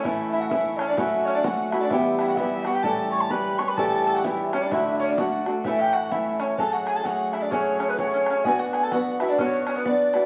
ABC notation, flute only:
X:1
M:2/4
L:1/16
Q:"Swing" 1/4=128
K:Amix
V:1 name="Flute"
e2 e f e2 c d | e2 c d f2 e d | e2 e f e2 f g | a2 c' a b2 c' b |
a2 a f e2 c d | e2 c d f2 z2 | e g f2 e2 c2 | [K:F#m] a f g a f2 e d |
c2 c B c4 | g f g a f2 e d | c2 c B d4 |]